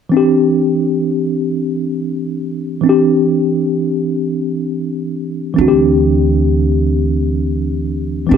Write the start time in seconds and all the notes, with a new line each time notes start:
0.09 E3 C4
0.14 D4 G4
2.81 E3 C4
2.86 D4 G4
5.54 E3 C4
5.58 D2 D4 F#4
5.68 G4
8.27 E3 C4
8.31 D2 D4 G4